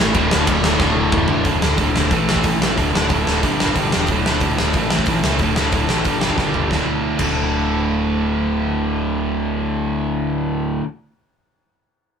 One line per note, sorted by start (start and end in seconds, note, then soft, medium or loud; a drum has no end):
0.00 0.13 A1 medium
0.00 0.14 A2 loud
0.00 0.14 A2 medium
0.00 0.15 E3 loud
0.00 0.15 E3 medium
0.00 0.16 A3 loud
0.00 0.17 A3 medium
0.14 0.29 D1 loud
0.14 0.79 D2 loud
0.14 0.63 D2 loud
0.14 0.80 A2 loud
0.14 0.64 A2 loud
0.14 0.81 D3 loud
0.14 0.63 D3 loud
0.14 kick loud
0.14 ride medium
0.31 0.47 D1 medium
0.31 snare loud
0.47 0.75 D1 loud
0.47 kick loud
0.47 ride medium
0.64 0.79 D2 medium
0.64 0.80 A2 medium
0.64 0.80 D3 medium
0.64 snare loud
0.80 1.08 D1 loud
0.80 1.29 D2 loud
0.80 1.44 D2 medium
0.80 1.45 A2 loud
0.80 1.29 A2 loud
0.80 1.28 D3 loud
0.80 1.44 D3 loud
0.80 kick loud
0.80 snare medium
1.12 1.27 D1 medium
1.12 kick loud
1.12 mid tom loud
1.28 1.44 D1 medium
1.28 1.46 D2 medium
1.28 1.46 A2 medium
1.28 1.45 D3 loud
1.28 floor tom loud
1.45 1.60 D1 medium
1.45 1.61 D2 medium
1.45 1.61 A2 loud
1.45 1.60 D3 loud
1.45 kick medium
1.45 open hi-hat soft
1.61 1.77 D1 medium
1.61 1.76 D2 medium
1.61 1.77 A2 medium
1.61 1.78 D3 medium
1.61 snare loud
1.77 1.93 D1 medium
1.77 1.94 D2 loud
1.77 1.93 A2 loud
1.77 1.93 D3 loud
1.77 kick loud
1.77 open hi-hat medium
1.94 2.11 D1 medium
1.94 2.10 D2 medium
1.94 2.10 A2 medium
1.94 2.10 D3 loud
1.94 snare loud
2.10 2.26 A1 medium
2.10 2.28 A2 medium
2.10 2.27 E3 medium
2.10 2.27 A3 medium
2.10 kick loud
2.10 open hi-hat medium
2.28 2.43 A1 medium
2.28 2.44 A2 medium
2.28 2.44 E3 medium
2.28 2.44 A3 loud
2.28 snare loud
2.36 kick medium
2.44 2.59 A1 medium
2.44 2.61 A2 medium
2.44 2.61 E3 medium
2.44 2.60 A3 medium
2.44 kick loud
2.44 open hi-hat medium
2.61 2.76 A1 medium
2.61 2.76 A2 medium
2.61 2.77 E3 medium
2.61 2.76 A3 medium
2.61 snare loud
2.77 2.92 D1 medium
2.77 2.95 D2 medium
2.77 2.95 A2 loud
2.77 2.95 D3 loud
2.77 kick medium
2.77 open hi-hat soft
2.94 3.09 D1 medium
2.94 3.09 D2 medium
2.94 3.10 A2 medium
2.94 3.11 D3 medium
2.94 snare loud
3.10 3.25 D1 medium
3.10 3.27 D2 medium
3.10 3.27 A2 loud
3.10 3.26 D3 loud
3.10 kick loud
3.10 open hi-hat medium
3.27 3.44 D1 medium
3.27 3.42 D2 medium
3.27 3.43 A2 medium
3.27 3.42 D3 medium
3.27 snare medium
3.42 3.58 G1 medium
3.42 3.61 G2 medium
3.42 3.60 D3 medium
3.42 3.59 G3 medium
3.42 kick medium
3.42 open hi-hat medium
3.60 3.75 G1 medium
3.60 3.76 G2 medium
3.60 3.77 D3 medium
3.60 3.77 G3 medium
3.60 snare loud
3.67 kick medium
3.76 3.91 G1 medium
3.76 3.93 G2 medium
3.76 3.92 D3 medium
3.76 3.92 G3 medium
3.76 kick medium
3.76 open hi-hat medium
3.92 4.08 E1 medium
3.92 4.09 G2 medium
3.92 4.08 D3 medium
3.92 4.08 G3 medium
3.92 snare loud
4.07 4.23 D1 medium
4.07 4.26 D2 medium
4.07 4.26 A2 loud
4.07 kick medium
4.07 open hi-hat soft
4.12 4.25 D3 loud
4.26 4.41 D1 medium
4.26 4.40 D2 medium
4.26 4.41 A2 medium
4.26 4.41 D3 medium
4.26 snare loud
4.41 4.56 D1 medium
4.41 4.59 D2 medium
4.41 4.59 A2 loud
4.41 4.58 D3 medium
4.41 kick medium
4.41 open hi-hat medium
4.58 4.74 D1 medium
4.58 4.74 D2 medium
4.58 4.73 A2 medium
4.58 4.74 D3 medium
4.58 snare loud
4.73 4.89 A1 medium
4.73 4.90 A2 medium
4.73 4.90 E3 medium
4.73 4.89 A3 medium
4.73 kick medium
4.73 open hi-hat soft
4.90 5.06 A1 medium
4.90 5.07 A2 medium
4.90 5.08 E3 medium
4.90 5.07 A3 medium
4.90 snare loud
4.99 kick medium
5.06 5.22 A1 medium
5.06 5.23 A2 medium
5.06 5.23 E3 medium
5.06 5.22 A3 medium
5.06 kick loud
5.06 open hi-hat medium
5.23 5.39 C#2 medium
5.23 5.38 A2 medium
5.23 5.39 E3 medium
5.23 5.39 A3 medium
5.23 snare loud
5.39 5.55 D1 medium
5.39 5.57 D2 loud
5.39 5.57 A2 loud
5.39 5.56 D3 loud
5.39 kick medium
5.39 open hi-hat soft
5.56 5.72 D1 medium
5.56 5.72 D2 medium
5.56 5.72 A2 medium
5.56 5.73 D3 medium
5.56 snare loud
5.72 5.88 D1 medium
5.72 5.89 D2 medium
5.72 5.89 A2 medium
5.72 5.88 D3 loud
5.72 kick loud
5.72 open hi-hat soft
5.89 6.04 A1 medium
5.89 6.05 D2 medium
5.89 6.05 A2 medium
5.89 6.05 D3 medium
5.89 snare medium
6.05 6.20 G1 medium
6.05 6.22 G2 medium
6.05 6.22 D3 medium
6.05 6.21 G3 medium
6.05 kick medium
6.05 open hi-hat soft
6.21 6.37 G1 medium
6.21 6.37 G2 medium
6.21 6.38 D3 medium
6.21 6.38 G3 loud
6.21 snare loud
6.30 kick medium
6.38 6.53 G1 medium
6.38 6.54 G2 medium
6.38 6.53 D3 medium
6.38 6.52 G3 medium
6.38 kick medium
6.38 snare medium
6.53 6.70 G1 medium
6.53 6.69 G2 medium
6.53 6.70 D3 medium
6.53 6.70 G3 medium
6.53 floor tom medium
6.70 6.80 D1 medium
6.70 7.18 D2 medium
6.70 7.21 A2 medium
6.70 kick medium
6.70 snare medium
6.74 7.22 D3 loud
7.18 10.79 D1 medium
7.18 10.82 D2 medium
7.18 10.84 A2 medium
7.18 kick medium
7.18 crash medium
7.23 10.85 D3 loud